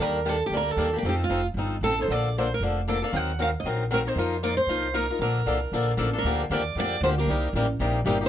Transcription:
0.00 D#2 D#3 G3 A#3 D4 G4 A#4
0.25 D#3 G3 A#3 D4 G4 A4
0.46 D2 G4
0.52 D#3 G3 A#3 D4 G4
0.57 A#4
0.71 A4
0.76 D#2 D#3 G3 A#3 D4 G4
0.93 A#3 D4 G4
0.98 G4
1.02 F2 F3 C4 D#4 A4
1.09 G4
1.24 F4
1.29 F1 F3 C4 D#4 A4
1.54 G1 F3 C4
1.59 D#4 A4
1.81 A1 F3 C4 D#4 A4
1.98 C4 D#4 A4 C5
2.08 A#1 D3 F3 A#3 D4 A4
2.12 D5
2.38 D3 F3 A#3 D4 A4 C5
2.54 A#4
2.60 F1 D3 F3 A#3 D4 A4
2.88 D3 F3 A#3 D4 A4 D5
3.02 A#3 D4 A4 F5
3.12 D#2 D#3 F#3 C4 D#4 A#4
3.16 F#5
3.39 D#3 F#3 C4 D#4 A#4 F5
3.60 A#1 D#5
3.65 D#3 F#3 C4 D#4 A#4
3.91 D#3 F#3 C4 D#4 A#4
4.05 C4 D#4 A#4 C5
4.15 F2 F3 A#3 D#4 F4 A#4
4.43 F3 A#3 D#4 F4 A#4 D5
4.57 C5
4.66 C2 F3 A#3 D#4 F4 A#4
4.94 F3 A#3 D#4 F4 A#4
5.10 D#4 F4 A#4
5.19 A#1 D3 F3 A#3 D4 A4 A#4
5.46 C2 D3 F3 A#3 D4 A4
5.72 A#1 D3 F3 A#3 D4 A4
5.97 A1 D3 F3 A#3 D4 A4
6.13 A#3 D4 A4
6.18 A#4
6.24 D2 D3 F3 A#3 D4 G4
6.50 D#2 D3 F3 A#3 D4 G4 D5
6.75 F2 D3 F3 A#3 D4 G4
6.80 D5
7.01 D2 D3 F3 A#3 D4 C5
7.05 G4
7.18 A#3 D4 G4 A#4
7.27 C2 C3 G3 A#3 D#4 G4
7.53 A1 C3 G3 A#3 G4
7.57 D#4
7.79 A#1 C3 G3 A#3 D#4 G4
8.05 G1 C3 G3 A#3 D#4 G4
8.21 A#3 D#4 G4

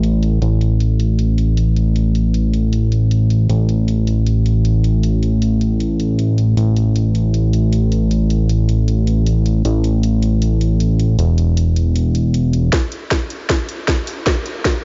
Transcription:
Already playing: A1
0.03 closed hi-hat
0.23 closed hi-hat
0.42 A1, closed hi-hat
0.61 closed hi-hat
0.80 closed hi-hat
1.00 closed hi-hat
1.19 closed hi-hat
1.38 closed hi-hat
1.57 closed hi-hat
1.76 closed hi-hat
1.96 closed hi-hat
2.15 closed hi-hat
2.34 closed hi-hat
2.54 closed hi-hat
2.73 closed hi-hat
2.92 closed hi-hat
3.11 closed hi-hat
3.30 closed hi-hat
3.50 A1, closed hi-hat
3.69 closed hi-hat
3.88 closed hi-hat
4.07 closed hi-hat
4.27 closed hi-hat
4.46 closed hi-hat
4.65 closed hi-hat
4.84 closed hi-hat
5.03 closed hi-hat
5.23 closed hi-hat
5.42 closed hi-hat
5.61 closed hi-hat
5.80 closed hi-hat
6.00 closed hi-hat
6.19 closed hi-hat
6.38 closed hi-hat
6.57 A1, closed hi-hat
6.76 closed hi-hat
6.96 closed hi-hat
7.15 closed hi-hat
7.34 closed hi-hat
7.53 closed hi-hat
7.73 closed hi-hat
7.92 closed hi-hat
8.11 closed hi-hat
8.30 closed hi-hat
8.49 closed hi-hat
8.69 closed hi-hat
8.88 closed hi-hat
9.07 closed hi-hat
9.26 closed hi-hat
9.46 closed hi-hat
9.65 A1, closed hi-hat
9.84 closed hi-hat
10.03 closed hi-hat
10.22 closed hi-hat
10.42 closed hi-hat
10.61 closed hi-hat
10.80 closed hi-hat
11.00 closed hi-hat
11.19 E1, closed hi-hat
11.38 closed hi-hat
11.57 closed hi-hat
11.76 closed hi-hat
11.96 closed hi-hat
12.15 closed hi-hat
12.34 closed hi-hat
12.53 closed hi-hat
12.73 kick, snare, closed hi-hat
12.92 closed hi-hat
13.11 kick, snare, closed hi-hat
13.30 closed hi-hat
13.49 kick, snare, closed hi-hat
13.69 closed hi-hat
13.88 kick, snare, closed hi-hat
14.07 open hi-hat
14.27 kick, snare, closed hi-hat
14.46 closed hi-hat
14.65 kick, snare, closed hi-hat

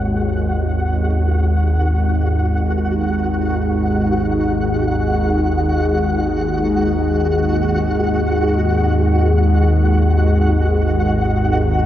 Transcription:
Already playing: G#1 D#2 G#3 D#4 F#4 C#5 F#5
1.66 G#4

